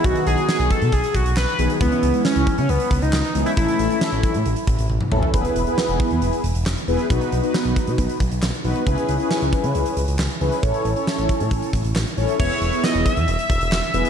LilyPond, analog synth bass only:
\new Staff \with { instrumentName = "Analog synth bass" } { \clef bass \time 4/4 \key e \major \tempo 4 = 136 b,,16 r16 b,,16 r8 b,,16 r16 b,16 b,,16 r16 b,,16 b,,16 b,,16 r16 b,,16 r16 | cis,16 r16 cis,16 r8 cis,16 r16 cis16 cis,16 r16 cis,16 cis,16 cis,16 r16 cis,16 r16 | a,,16 r16 a,,16 r8 a,,16 r16 a,16 a,,16 r16 a,,16 a,,16 a,,16 r16 a,,16 r16 | e,,16 r16 e,,16 r8 e,,16 r16 e,16 e,,16 r16 e,,16 e,,16 e,,16 r16 e,,16 r16 |
b,,16 r16 b,,16 r8 b,,16 r16 b,16 b,,16 r16 b,,16 b,,16 b,,16 r16 b,,16 r16 | cis,16 r16 cis,16 r8 cis,16 r16 cis16 cis,16 r16 cis,16 cis,16 cis,16 r16 cis,16 r16 | a,,16 r16 a,,16 r8 a,,16 r16 a,16 a,,16 r16 a,,16 a,,16 a,,16 r16 a,,16 r16 | e,,16 r16 e,,16 r8 e,,16 r16 e,16 e,,16 r16 e,,16 e,,16 e,,16 r16 e,,16 r16 | }